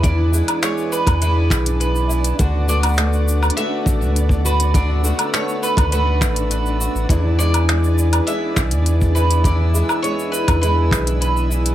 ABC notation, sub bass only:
X:1
M:4/4
L:1/16
Q:1/4=102
K:Emix
V:1 name="Sub bass" clef=bass
E,,3 z4 E,,3 B,,,6 | D,,8 z2 A,,, D,,4- D,,- | D,,3 z4 D,,3 A,,,4- A,,, A,,, | E,,8 z2 B,,, E,,4- E,,- |
E,,3 z4 E,,3 B,,,6 |]